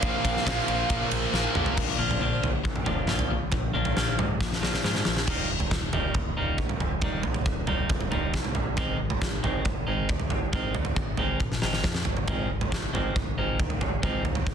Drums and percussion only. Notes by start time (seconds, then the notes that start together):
0.02 kick, ride
0.25 kick, ride
0.37 snare
0.47 kick, snare, ride
0.59 snare
0.68 ride
0.90 kick, ride
1.11 ride
1.34 snare
1.55 mid tom
1.66 floor tom
1.77 kick, floor tom, crash
2.11 floor tom
2.44 floor tom
2.65 kick
2.76 mid tom
2.86 floor tom, mid tom
3.07 snare, mid tom
3.19 floor tom
3.52 kick, floor tom
3.85 floor tom
3.97 snare
4.19 floor tom, mid tom
4.41 kick, snare
4.52 snare
4.63 snare
4.74 snare
4.84 snare
4.95 snare
5.05 snare
5.17 snare
5.27 kick, floor tom, crash
5.60 floor tom
5.71 kick, snare
5.93 floor tom, mid tom
6.14 kick, floor tom
6.58 kick, floor tom
6.69 floor tom
6.80 floor tom, mid tom
7.01 kick, floor tom
7.23 floor tom
7.34 floor tom
7.46 kick
7.67 floor tom
7.89 kick, floor tom
8.01 floor tom
8.12 floor tom
8.34 kick, snare, floor tom, mid tom
8.44 floor tom
8.55 floor tom, mid tom
8.77 kick, floor tom
9.10 floor tom
9.22 kick, snare
9.44 floor tom, mid tom
9.65 kick, floor tom
10.09 kick, floor tom
10.20 floor tom
10.30 floor tom, mid tom
10.53 kick, floor tom
10.75 floor tom
10.85 floor tom
10.96 kick
11.17 floor tom
11.40 kick, high tom
11.52 snare
11.62 snare
11.73 snare
11.84 kick, snare
11.94 snare
12.05 floor tom
12.17 floor tom
12.28 kick, floor tom
12.61 floor tom
12.72 kick, snare
12.95 floor tom, mid tom
13.16 kick, floor tom
13.60 kick, floor tom
13.70 floor tom
13.81 floor tom, mid tom
14.03 kick, floor tom
14.25 floor tom
14.35 floor tom
14.47 kick